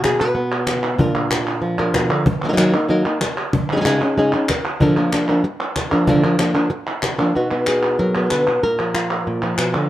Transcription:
0.00 0.97 B2 medium
0.04 0.20 G#4 medium
0.04 cajon slap loud
0.04 clap medium
0.20 1.00 B4 medium
0.20 clap soft
0.35 0.97 B3 medium
0.67 cajon slap loud
0.67 clap medium
0.83 clap medium
0.98 1.94 A#2 medium
0.98 1.77 D4 medium
0.98 1.14 F4 medium
0.98 1.78 A#4 medium
0.98 cajon bass loud
1.15 1.78 F4 medium
1.15 cajon slap soft
1.31 cajon slap loud
1.31 clap medium
1.47 clap soft
1.62 2.26 F3 medium
1.78 2.24 D4 medium
1.78 2.25 F4 medium
1.78 2.25 A#4 medium
1.94 2.10 B2 medium
1.94 cajon bass medium
1.94 cajon slap loud
1.94 clap medium
2.09 2.26 D3 medium
2.09 clap medium
2.26 muted nylon-string guitar stroke medium
2.26 cajon bass loud
2.42 2.47 F#3 medium
2.42 2.48 A#3 medium
2.42 2.48 D#4 medium
2.42 2.48 A#4 medium
2.42 cajon slap soft
2.49 2.52 F#3 medium
2.49 2.52 A#3 medium
2.49 2.52 D#4 medium
2.49 2.53 A#4 medium
2.53 2.57 F#3 medium
2.53 2.57 A#3 medium
2.53 2.57 D#4 medium
2.53 2.57 A#4 medium
2.57 2.73 D#3 medium
2.57 2.73 F#3 medium
2.57 2.73 A#3 medium
2.57 2.73 D#4 medium
2.57 2.72 A#4 medium
2.57 cajon slap loud
2.57 clap medium
2.73 2.89 A#3 soft
2.73 2.89 D#4 medium
2.73 2.89 A#4 soft
2.73 clap soft
2.88 3.04 D#3 medium
2.88 3.05 F#3 medium
2.88 3.05 A#3 medium
2.88 3.04 D#4 medium
2.88 3.03 A#4 medium
3.04 3.20 A#3 soft
3.04 3.20 D#4 soft
3.04 3.20 A#4 medium
3.21 muted nylon-string guitar stroke medium
3.21 cajon slap loud
3.21 clap medium
3.37 clap soft
3.53 muted nylon-string guitar stroke medium
3.53 cajon bass loud
3.72 3.75 G#3 medium
3.72 3.76 C#4 medium
3.72 3.76 D#4 medium
3.72 3.76 G#4 medium
3.76 3.80 G#3 medium
3.76 3.80 C#4 medium
3.76 3.80 D#4 medium
3.76 3.81 G#4 medium
3.81 3.84 G#3 medium
3.81 3.85 C#4 medium
3.81 3.85 D#4 medium
3.81 3.85 G#4 medium
3.85 4.00 C#3 medium
3.85 4.01 G#3 medium
3.85 4.01 C#4 medium
3.85 4.01 D#4 medium
3.85 4.00 G#4 loud
3.85 cajon slap loud
3.85 clap medium
4.01 4.17 C#4 soft
4.01 4.17 D#4 medium
4.01 4.17 G#4 medium
4.01 clap soft
4.17 4.33 C#3 medium
4.17 4.33 G#3 medium
4.17 4.33 C#4 medium
4.17 4.33 D#4 loud
4.17 4.32 G#4 medium
4.33 4.49 C#4 soft
4.33 4.49 D#4 medium
4.33 4.49 G#4 medium
4.33 cajon slap soft
4.49 muted nylon-string guitar stroke medium
4.49 cajon bass medium
4.49 cajon slap loud
4.49 clap medium
4.65 clap medium
4.80 4.96 A#2 medium
4.80 4.96 D3 medium
4.80 4.96 F3 medium
4.80 4.97 A#3 medium
4.80 4.96 D4 medium
4.80 4.96 A#4 medium
4.80 cajon bass medium
4.97 5.12 F3 medium
4.97 5.12 A#3 medium
4.97 5.12 D4 medium
4.97 5.12 A#4 medium
5.13 5.28 F3 medium
5.13 5.28 A#3 medium
5.13 5.28 D4 medium
5.13 5.28 A#4 medium
5.13 cajon slap medium
5.13 clap medium
5.28 5.43 F3 soft
5.28 5.43 A#3 soft
5.28 5.43 D4 medium
5.28 5.44 A#4 medium
5.28 clap soft
5.44 muted nylon-string guitar stroke medium
5.76 cajon bass medium
5.76 cajon slap loud
5.76 clap medium
5.92 6.07 F3 soft
5.92 6.07 A#3 soft
5.92 6.07 D4 medium
5.92 6.07 A#4 medium
5.92 clap soft
6.07 6.23 A#2 medium
6.07 6.23 D3 medium
6.07 6.24 F3 medium
6.07 6.24 A#3 medium
6.07 6.23 D4 medium
6.07 6.22 A#4 medium
6.07 cajon bass loud
6.24 6.38 F3 medium
6.24 6.38 A#3 medium
6.24 6.39 D4 medium
6.24 6.39 A#4 medium
6.24 cajon slap soft
6.39 6.55 F3 medium
6.39 6.55 A#3 medium
6.39 6.54 D4 medium
6.39 6.53 A#4 medium
6.39 cajon slap loud
6.39 clap medium
6.54 6.69 F3 soft
6.54 6.69 A#3 soft
6.54 6.70 D4 soft
6.54 6.69 A#4 medium
6.54 clap medium
6.70 muted nylon-string guitar stroke medium
6.70 cajon slap soft
6.87 cajon slap soft
7.02 cajon slap loud
7.02 clap medium
7.18 7.35 F3 soft
7.18 7.35 A#3 soft
7.18 7.35 D4 soft
7.18 7.34 A#4 medium
7.18 clap medium
7.35 8.47 B2 medium
7.35 7.50 B3 soft
7.35 8.83 D#4 soft
7.35 7.67 F#4 medium
7.51 8.15 B3 medium
7.51 clap soft
7.67 8.31 G#4 medium
7.67 clap medium
7.83 clap soft
7.99 8.31 F#3 medium
7.99 8.31 A#4 medium
8.16 8.61 B3 medium
8.31 8.47 D3 medium
8.31 8.63 B4 loud
8.31 clap medium
8.47 8.63 B2 medium
8.47 clap soft
8.63 9.26 A#2 medium
8.63 9.27 A#4 loud
8.80 9.42 F3 medium
8.94 9.89 F4 medium
8.94 clap medium
9.11 clap soft
9.27 9.58 A#2 medium
9.43 9.89 F3 medium
9.58 9.74 B2 medium
9.58 clap medium
9.74 9.89 D3 medium
9.74 clap medium

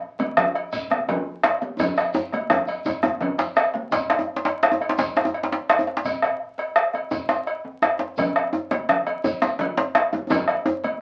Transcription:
0.01 djembe slap soft
0.19 cowbell medium
0.19 djembe slap medium
0.19 high conga medium
0.37 bombo rim loud
0.37 djembe slap soft
0.37 djembe tone medium
0.37 djembe bass medium
0.37 low conga medium
0.55 bombo rim soft
0.55 cowbell medium
0.72 bombo low medium
0.72 cowbell medium
0.72 high conga soft
0.72 shekere medium
0.90 bombo rim medium
0.90 djembe slap medium
0.90 high conga medium
1.08 cowbell medium
1.08 djembe bass medium
1.08 low conga medium
1.27 djembe slap soft
1.43 bombo rim loud
1.43 cowbell medium
1.43 djembe slap loud
1.43 djembe slap soft
1.43 djembe tone medium
1.62 djembe slap medium
1.62 high conga medium
1.79 bombo low loud
1.79 cowbell medium
1.79 djembe tone loud
1.79 high conga soft
1.79 djembe bass medium
1.79 low conga medium
1.79 shekere medium
1.96 bombo rim medium
1.96 cowbell medium
1.96 djembe tone soft
1.96 shekere soft
2.13 bombo rim soft
2.13 djembe tone loud
2.13 shekere soft
2.32 bombo rim soft
2.32 cowbell medium
2.32 djembe slap medium
2.32 high conga medium
2.50 bombo rim loud
2.50 djembe slap soft
2.50 djembe tone loud
2.50 djembe tone medium
2.50 djembe bass medium
2.50 low conga medium
2.67 cowbell medium
2.67 djembe slap soft
2.67 high conga soft
2.67 shekere soft
2.85 bombo low medium
2.85 cowbell medium
2.85 high conga soft
2.85 djembe tone loud
2.85 shekere medium
3.03 bombo rim medium
3.03 djembe slap medium
3.03 high conga medium
3.03 djembe tone loud
3.03 djembe tone medium
3.21 cowbell soft
3.21 high conga soft
3.21 low conga medium
3.21 djembe bass medium
3.38 bombo rim soft
3.38 djembe slap loud
3.38 shekere soft
3.56 bombo rim loud
3.56 cowbell soft
3.56 djembe slap soft
3.56 djembe tone medium
3.56 high conga soft
3.56 shekere soft
3.74 djembe slap medium
3.74 high conga medium
3.92 bombo low loud
3.92 cowbell medium
3.92 djembe slap loud
3.92 djembe bass medium
3.92 shekere medium
4.10 bombo rim medium
4.10 cowbell medium
4.10 djembe slap medium
4.10 djembe tone medium
4.19 djembe tone medium
4.36 djembe slap medium
4.45 cowbell soft
4.45 djembe slap medium
4.45 djembe slap soft
4.63 bombo rim loud
4.63 djembe slap medium
4.63 djembe slap soft
4.72 djembe tone medium
4.80 bombo rim soft
4.80 cowbell soft
4.80 djembe slap soft
4.80 djembe tone medium
4.89 djembe slap medium
4.98 bombo low loud
4.98 cowbell soft
4.98 djembe slap soft
4.98 djembe slap loud
4.98 djembe bass medium
4.98 shekere medium
5.16 bombo rim medium
5.16 djembe slap medium
5.16 shekere soft
5.25 djembe tone medium
5.34 cowbell soft
5.43 djembe slap medium
5.52 djembe slap medium
5.52 djembe tone medium
5.69 bombo rim loud
5.69 cowbell soft
5.69 djembe slap medium
5.69 djembe slap soft
5.79 djembe tone medium
5.87 djembe slap medium
5.97 djembe slap medium
6.05 bombo low medium
6.05 cowbell medium
6.05 djembe bass medium
6.05 shekere medium
6.22 bombo rim medium
6.22 cowbell medium
6.22 djembe tone medium
6.58 cowbell medium
6.58 djembe slap medium
6.76 bombo rim loud
6.76 djembe slap soft
6.94 bombo rim soft
6.94 cowbell soft
6.94 djembe slap soft
6.94 djembe tone medium
7.11 bombo low loud
7.11 cowbell medium
7.11 djembe slap soft
7.11 djembe tone medium
7.11 djembe bass medium
7.11 shekere soft
7.29 bombo rim medium
7.29 djembe slap medium
7.29 shekere soft
7.47 cowbell medium
7.65 djembe tone medium
7.82 bombo rim loud
7.82 cowbell medium
7.82 djembe slap soft
7.82 djembe tone medium
7.99 djembe slap medium
8.17 bombo low loud
8.17 cowbell medium
8.17 djembe bass medium
8.17 low conga medium
8.17 shekere medium
8.36 bombo rim medium
8.36 cowbell medium
8.36 djembe tone medium
8.53 djembe tone medium
8.71 cowbell medium
8.71 djembe slap medium
8.71 high conga medium
8.89 bombo rim medium
8.89 djembe slap soft
8.89 high conga soft
8.89 low conga medium
9.07 bombo rim soft
9.07 cowbell medium
9.07 djembe slap soft
9.07 djembe tone medium
9.24 bombo low medium
9.24 cowbell medium
9.24 djembe slap soft
9.24 djembe tone medium
9.24 djembe bass medium
9.24 shekere medium
9.42 bombo rim medium
9.42 djembe slap medium
9.42 high conga medium
9.42 shekere soft
9.59 cowbell medium
9.59 low conga medium
9.77 djembe slap medium
9.77 djembe tone medium
9.77 high conga soft
9.95 bombo rim loud
9.95 cowbell medium
9.95 djembe slap medium
9.95 high conga soft
10.13 djembe slap medium
10.13 djembe tone medium
10.13 high conga medium
10.30 bombo rim soft
10.30 bombo low loud
10.30 cowbell medium
10.30 djembe tone loud
10.30 djembe bass medium
10.30 low conga medium
10.30 shekere medium
10.48 bombo rim medium
10.48 cowbell medium
10.48 djembe slap soft
10.48 djembe tone medium
10.66 djembe tone loud
10.84 cowbell medium
10.84 djembe slap medium
10.84 high conga medium

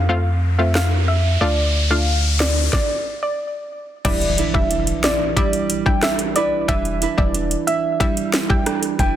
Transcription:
0.00 1.37 F2 medium
0.00 riser medium
0.09 0.29 A3 loud
0.09 0.29 C4 medium
0.09 0.30 F4 loud
0.09 0.22 F5 medium
0.59 0.79 A3 medium
0.59 0.79 C4 medium
0.59 0.79 F4 medium
0.59 0.72 E5 medium
0.75 0.88 F5 medium
0.75 cross-stick medium
0.75 snare loud
1.08 1.21 E5 medium
1.41 2.69 D2 medium
1.41 1.87 A3 medium
1.41 1.87 D4 medium
1.41 1.87 F4 loud
1.41 1.67 D5 loud
1.91 2.11 A3 medium
1.91 2.11 D4 medium
1.91 2.11 F4 medium
1.91 2.16 F5 medium
2.40 2.66 D5 medium
2.40 snare loud
2.73 2.86 D5 medium
2.73 kick loud
2.73 snare medium
3.23 3.35 D5 medium
4.05 4.42 E1 loud
4.05 6.68 E3 medium
4.05 4.50 G3 loud
4.05 4.50 D4 medium
4.05 4.51 E4 loud
4.05 4.38 B4 medium
4.05 4.31 D5 loud
4.05 kick loud
4.05 closed hi-hat medium
4.05 crash loud
4.05 impact medium
4.21 closed hi-hat medium
4.38 4.70 D4 medium
4.38 5.03 E4 medium
4.38 6.36 B4 medium
4.38 closed hi-hat medium
4.54 4.92 E1 loud
4.54 4.74 G3 medium
4.54 4.74 D4 medium
4.54 4.75 E4 medium
4.54 4.80 E5 medium
4.54 kick medium
4.71 6.02 D4 medium
4.71 closed hi-hat medium
4.87 closed hi-hat medium
5.04 6.35 E4 medium
5.04 5.30 D5 medium
5.04 snare loud
5.04 closed hi-hat medium
5.36 5.57 G3 loud
5.36 7.99 G3 medium
5.36 5.57 D4 medium
5.36 5.57 E4 loud
5.36 5.50 D5 medium
5.36 kick loud
5.36 closed hi-hat medium
5.53 closed hi-hat medium
5.70 closed hi-hat medium
5.86 6.06 G3 medium
5.86 6.06 D4 medium
5.86 6.06 E4 medium
5.86 5.99 G5 medium
5.86 kick medium
6.03 6.35 D4 medium
6.03 6.16 E5 medium
6.03 cross-stick loud
6.03 snare loud
6.03 closed hi-hat medium
6.19 closed hi-hat medium
6.36 7.01 D4 medium
6.36 7.01 E4 medium
6.36 6.68 B4 medium
6.36 6.49 D5 medium
6.36 closed hi-hat medium
6.68 7.06 E1 loud
6.68 9.16 E3 medium
6.68 7.14 G3 loud
6.68 7.14 D4 medium
6.68 7.14 E4 loud
6.68 7.02 B4 medium
6.68 6.94 E5 loud
6.68 kick loud
6.68 closed hi-hat medium
6.85 closed hi-hat soft
7.02 7.33 D4 medium
7.02 7.66 E4 medium
7.02 8.99 B4 medium
7.02 closed hi-hat medium
7.18 7.56 E1 loud
7.18 7.38 G3 medium
7.18 7.38 D4 medium
7.18 7.38 E4 medium
7.18 7.44 D5 medium
7.18 kick medium
7.34 8.65 D4 medium
7.34 closed hi-hat medium
7.51 closed hi-hat medium
7.67 8.98 E4 medium
7.67 7.93 E5 medium
7.67 closed hi-hat medium
8.00 8.20 G3 loud
8.00 9.16 G3 medium
8.00 8.21 D4 medium
8.00 8.21 E4 loud
8.00 8.13 E5 medium
8.00 kick loud
8.00 closed hi-hat medium
8.17 closed hi-hat medium
8.33 snare loud
8.33 closed hi-hat medium
8.50 8.70 G3 medium
8.50 8.70 D4 medium
8.50 8.70 E4 medium
8.50 8.63 G5 medium
8.50 kick loud
8.66 8.98 D4 medium
8.66 cross-stick loud
8.66 closed hi-hat medium
8.83 closed hi-hat medium
8.99 9.16 F1 loud
8.99 9.16 D4 medium
8.99 9.16 E4 medium
8.99 9.16 B4 medium
8.99 9.12 G5 medium
8.99 kick medium
8.99 closed hi-hat medium

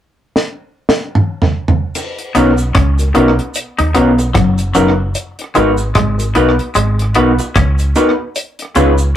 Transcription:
0.36 snare medium
0.89 snare medium
1.15 mid tom medium
1.42 floor tom medium
1.68 floor tom medium
1.95 crash medium
1.95 cabasa medium
2.19 closed hi-hat soft
2.35 2.74 B1 medium
2.35 2.51 F#3 medium
2.35 2.52 B3 medium
2.35 2.51 C#4 medium
2.35 2.51 D#4 medium
2.35 2.52 D#4 medium
2.35 2.51 F#4 medium
2.35 2.51 A#4 medium
2.35 2.52 A#4 medium
2.35 closed hi-hat medium
2.35 cabasa soft
2.58 cabasa medium
2.75 3.14 C#2 medium
2.75 2.99 C#4 medium
2.75 kick loud
2.75 cross-stick loud
2.75 closed hi-hat medium
2.99 3.06 F#4 soft
2.99 3.06 A#4 soft
2.99 closed hi-hat soft
2.99 cabasa soft
3.14 3.38 B1 medium
3.14 3.31 F#3 medium
3.14 3.31 B3 loud
3.14 3.30 C#4 medium
3.14 3.30 D#4 medium
3.14 3.32 D#4 medium
3.14 3.30 F#4 medium
3.14 3.30 A#4 medium
3.14 3.32 A#4 medium
3.14 closed hi-hat medium
3.39 closed hi-hat soft
3.54 closed hi-hat medium
3.54 cabasa medium
3.79 3.95 D#2 medium
3.79 3.89 D#4 medium
3.79 closed hi-hat medium
3.94 4.34 B1 medium
3.94 4.11 F#3 medium
3.94 4.11 B3 medium
3.94 4.10 C#4 medium
3.94 4.10 D#4 medium
3.94 4.12 D#4 medium
3.94 4.11 F#4 medium
3.94 4.11 A#4 medium
3.94 4.12 A#4 medium
3.94 closed hi-hat medium
4.18 muted clean electric guitar stroke soft
4.18 closed hi-hat soft
4.18 cabasa soft
4.35 4.74 F#1 loud
4.35 4.59 F#3 medium
4.35 kick loud
4.35 cross-stick loud
4.35 closed hi-hat medium
4.35 cabasa soft
4.58 closed hi-hat soft
4.58 cabasa soft
4.75 5.14 F#1 loud
4.75 4.91 F#3 medium
4.75 4.91 B3 medium
4.75 4.91 C#4 medium
4.75 4.91 D#4 medium
4.75 4.91 F#4 medium
4.75 4.91 A#4 medium
4.75 4.92 A#4 medium
4.75 closed hi-hat medium
4.75 cabasa medium
5.15 closed hi-hat medium
5.15 cabasa medium
5.39 closed hi-hat medium
5.55 5.94 G#1 medium
5.55 5.79 G#3 medium
5.55 5.70 B3 medium
5.55 5.71 B3 medium
5.55 5.71 D#4 medium
5.55 5.71 F#4 medium
5.55 5.72 F#4 medium
5.55 5.71 A#4 loud
5.55 5.72 B4 medium
5.55 closed hi-hat medium
5.55 cabasa soft
5.77 cabasa medium
5.95 6.34 G#1 medium
5.95 6.19 G#3 medium
5.95 kick loud
5.95 cross-stick loud
5.95 closed hi-hat medium
6.18 6.25 F#4 soft
6.18 6.25 A#4 soft
6.18 closed hi-hat soft
6.18 cabasa soft
6.35 6.58 B1 medium
6.35 6.50 B3 medium
6.35 6.51 B3 medium
6.35 6.50 D#4 medium
6.35 6.51 D#4 medium
6.35 6.51 F#4 medium
6.35 6.52 F#4 medium
6.35 6.51 A#4 medium
6.35 6.52 B4 medium
6.35 closed hi-hat medium
6.59 closed hi-hat soft
6.75 7.14 G#1 loud
6.75 6.99 G#3 medium
6.75 closed hi-hat medium
6.75 cabasa medium
6.99 closed hi-hat medium
7.15 7.38 B1 medium
7.15 7.31 B3 medium
7.15 7.32 D#4 medium
7.15 7.31 D#4 medium
7.15 7.32 F#4 medium
7.15 7.31 F#4 medium
7.15 7.31 A#4 medium
7.15 7.32 B4 medium
7.15 closed hi-hat medium
7.39 muted clean electric guitar stroke medium
7.39 closed hi-hat soft
7.39 cabasa medium
7.55 7.94 C#2 loud
7.55 7.80 C#4 medium
7.55 kick loud
7.55 cross-stick loud
7.55 closed hi-hat medium
7.55 cabasa soft
7.78 closed hi-hat soft
7.78 cabasa soft
7.95 8.11 B3 medium
7.95 8.11 D#4 medium
7.95 8.12 D#4 medium
7.95 8.11 F#4 medium
7.95 8.12 F#4 medium
7.95 8.11 A#4 medium
7.95 8.12 B4 medium
7.95 closed hi-hat medium
7.95 cabasa medium
8.35 closed hi-hat medium
8.35 cabasa medium
8.59 closed hi-hat medium
8.75 9.14 C#2 medium
8.75 8.91 G#3 medium
8.75 8.91 B3 medium
8.75 8.92 C#4 loud
8.75 8.91 D#4 medium
8.75 8.92 F4 loud
8.75 8.91 F4 medium
8.75 8.91 G#4 loud
8.75 8.92 B4 loud
8.75 closed hi-hat medium
8.75 cabasa soft
8.98 cabasa medium

